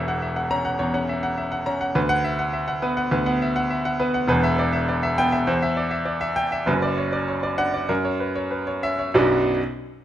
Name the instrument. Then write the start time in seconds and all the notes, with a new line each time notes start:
grand piano
Already playing: E1 E2 C#5 E5 F#5
0.08 F#5
0.22 E5
0.36 F#5
0.51 C#4 A#5
0.65 F#5
0.79 E2 C#5
0.94 C#4 F#5
1.09 E5
1.23 F#5
1.38 E5
1.52 F#5
1.66 C#4 A#5
1.81 F#5
1.95 D2 B4
2.09 F#5
2.24 E5
2.39 F#5
2.53 E5
2.68 F#5
2.82 B3 B4
2.97 F#5
3.11 D2 B4
3.26 B3 F#5
3.42 E5
3.56 F#5
3.70 E5
3.85 F#5
4.00 B3 B4
4.14 F#5
4.28 E1 E2 B4
4.44 E5
4.59 D5
4.73 E5
4.89 D5
5.03 E5
5.18 B3 G5
5.32 E5
5.47 E2 C5
5.62 E5
5.77 D5
5.91 E5
6.05 D5
6.21 E5
6.36 G5
6.52 E5
6.66 F#1 F#2 B4
6.82 D5
6.98 C#5
7.13 D5
7.28 C#5
7.43 D5
7.58 D4 F#5
7.74 D5
7.89 F#2 A#4
8.05 C#5
8.20 B4
8.35 C#5
8.51 B4
8.67 C#5
8.83 C#4 E5
8.99 C#5
9.14 B1 F#2 F#3 B3 D4 F#4